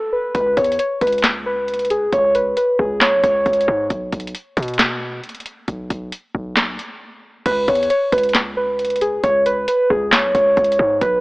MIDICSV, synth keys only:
0, 0, Header, 1, 2, 480
1, 0, Start_track
1, 0, Key_signature, 4, "minor"
1, 0, Tempo, 444444
1, 375, Time_signature, 4, 2, 24, 8
1, 12101, End_track
2, 0, Start_track
2, 0, Title_t, "Synth keys"
2, 0, Program_c, 0, 88
2, 136, Note_on_c, 0, 71, 79
2, 358, Note_off_c, 0, 71, 0
2, 375, Note_on_c, 0, 71, 97
2, 598, Note_off_c, 0, 71, 0
2, 616, Note_on_c, 0, 73, 87
2, 838, Note_off_c, 0, 73, 0
2, 857, Note_on_c, 0, 73, 80
2, 1078, Note_off_c, 0, 73, 0
2, 1097, Note_on_c, 0, 71, 81
2, 1318, Note_off_c, 0, 71, 0
2, 1577, Note_on_c, 0, 71, 85
2, 2027, Note_off_c, 0, 71, 0
2, 2056, Note_on_c, 0, 68, 81
2, 2278, Note_off_c, 0, 68, 0
2, 2297, Note_on_c, 0, 73, 101
2, 2518, Note_off_c, 0, 73, 0
2, 2536, Note_on_c, 0, 71, 85
2, 2758, Note_off_c, 0, 71, 0
2, 2776, Note_on_c, 0, 71, 87
2, 2998, Note_off_c, 0, 71, 0
2, 3016, Note_on_c, 0, 68, 74
2, 3238, Note_off_c, 0, 68, 0
2, 3255, Note_on_c, 0, 73, 87
2, 3477, Note_off_c, 0, 73, 0
2, 3494, Note_on_c, 0, 73, 91
2, 4171, Note_off_c, 0, 73, 0
2, 8054, Note_on_c, 0, 71, 102
2, 8277, Note_off_c, 0, 71, 0
2, 8295, Note_on_c, 0, 73, 84
2, 8518, Note_off_c, 0, 73, 0
2, 8534, Note_on_c, 0, 73, 85
2, 8757, Note_off_c, 0, 73, 0
2, 8773, Note_on_c, 0, 71, 83
2, 8996, Note_off_c, 0, 71, 0
2, 9253, Note_on_c, 0, 71, 85
2, 9705, Note_off_c, 0, 71, 0
2, 9734, Note_on_c, 0, 68, 80
2, 9957, Note_off_c, 0, 68, 0
2, 9973, Note_on_c, 0, 73, 102
2, 10197, Note_off_c, 0, 73, 0
2, 10215, Note_on_c, 0, 71, 88
2, 10437, Note_off_c, 0, 71, 0
2, 10455, Note_on_c, 0, 71, 90
2, 10678, Note_off_c, 0, 71, 0
2, 10695, Note_on_c, 0, 68, 76
2, 10918, Note_off_c, 0, 68, 0
2, 10934, Note_on_c, 0, 73, 96
2, 11157, Note_off_c, 0, 73, 0
2, 11175, Note_on_c, 0, 73, 88
2, 11852, Note_off_c, 0, 73, 0
2, 11894, Note_on_c, 0, 71, 100
2, 12101, Note_off_c, 0, 71, 0
2, 12101, End_track
0, 0, End_of_file